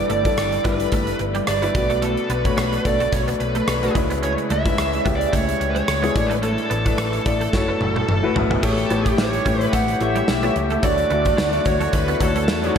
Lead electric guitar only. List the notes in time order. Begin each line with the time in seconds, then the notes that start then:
0.11 D5
0.66 B4
1.48 D5
2.03 A4
2.30 B4
2.86 D5
3.13 C#5
3.40 B4
4.24 C#5
4.52 E5
5.16 D5
5.34 C#5
5.71 C#5
6.26 B4
6.44 A4
7.28 A4
8.64 A4
9.08 G4
9.19 C#5
9.63 B4
9.73 F#5
10.01 E5
10.84 D5
11.66 C#5
11.94 B4
12.21 A4